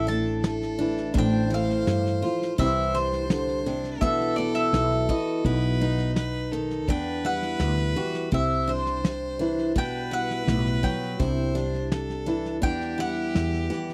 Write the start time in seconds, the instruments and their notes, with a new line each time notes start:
Already playing: fretless electric bass A1, nylon-string guitar A2 C4, fiddle A4
0.07 nylon-string guitar A3, steel-string acoustic guitar D4, mandolin A5, snare
0.42 fiddle A4, snare
0.62 snare
0.79 nylon-string guitar E3 E4, steel-string acoustic guitar D4, snare
0.98 snare
1.14 fretless electric bass A1, nylon-string guitar A2 C4, steel-string acoustic guitar D4, fiddle C5, kick, snare
1.18 mandolin G5
1.50 steel-string acoustic guitar E3, nylon-string guitar A3, mandolin F5, snare
1.70 snare
1.87 fretless electric bass G2, snare
2.06 snare
2.22 nylon-string guitar F3 F4, steel-string acoustic guitar F4, snare
2.42 snare
2.58 fretless electric bass C2, nylon-string guitar C3 E3 G3 C4 E4, steel-string acoustic guitar E4, fiddle C5, mandolin E5, kick, snare
2.94 nylon-string guitar G3, steel-string acoustic guitar D4, mandolin C5, snare
3.13 snare
3.29 nylon-string guitar D3, snare
3.48 snare
3.66 nylon-string guitar C3, steel-string acoustic guitar D4, snare
3.84 snare
4.01 fretless electric bass B1, nylon-string guitar B2 E3 B3 E4, steel-string acoustic guitar D4, fiddle A4, mandolin E5, kick, snare
4.20 snare
4.36 nylon-string guitar B3, steel-string acoustic guitar E4, mandolin D5, snare
4.55 mandolin E5, snare
4.73 fretless electric bass B1, snare
4.91 snare
5.08 nylon-string guitar E3 E4, steel-string acoustic guitar F#4, mandolin D#5, kick, snare
5.44 fretless electric bass B1, nylon-string guitar B2 D#4, steel-string acoustic guitar E4, fiddle B4, kick, snare
5.81 nylon-string guitar B3, steel-string acoustic guitar D#4, snare
5.98 snare
6.15 fiddle B4, snare
6.52 nylon-string guitar D#3, steel-string acoustic guitar D#4, fiddle A4, snare
6.70 snare
6.88 fretless electric bass E2, nylon-string guitar E2 B3, steel-string acoustic guitar D4, fiddle B4, mandolin G5, kick, snare
7.24 nylon-string guitar G3, steel-string acoustic guitar E4, mandolin F#5, snare
7.42 snare
7.60 fretless electric bass D2, snare
7.78 snare
7.96 nylon-string guitar E3 G4, steel-string acoustic guitar F#4, snare
8.14 snare
8.31 fretless electric bass C2, nylon-string guitar C3 C4, steel-string acoustic guitar E4, fiddle C5, mandolin E5, kick, snare
8.67 nylon-string guitar G3, steel-string acoustic guitar D4, mandolin C5, snare
8.86 snare
9.04 snare
9.39 nylon-string guitar E3 E4, steel-string acoustic guitar D4, snare
9.58 snare
9.76 fretless electric bass B1, nylon-string guitar B2 B3, steel-string acoustic guitar D4, fiddle B4, mandolin G5, kick, snare
10.11 nylon-string guitar G3, steel-string acoustic guitar E4, mandolin F#5, snare
10.30 snare
10.47 fretless electric bass B1, nylon-string guitar A2, snare
10.66 snare
10.83 nylon-string guitar B2, steel-string acoustic guitar F#3, mandolin G5, kick, snare
11.03 snare
11.19 fretless electric bass C2, nylon-string guitar C3 D4, steel-string acoustic guitar E4, fiddle C5, kick, snare
11.55 nylon-string guitar G3, steel-string acoustic guitar D4, snare
11.74 snare
11.92 fiddle A4, snare
12.09 snare
12.26 nylon-string guitar E3 E4, steel-string acoustic guitar D4, snare
12.45 snare
12.61 nylon-string guitar E2 B3, fretless electric bass E2, steel-string acoustic guitar D4, fiddle G4, mandolin G5, kick, snare
12.81 snare
12.98 nylon-string guitar G3, steel-string acoustic guitar E4, mandolin F#5, snare
13.35 fretless electric bass E2, snare
13.54 snare
13.70 nylon-string guitar E3 G4, steel-string acoustic guitar F#5, snare
13.89 snare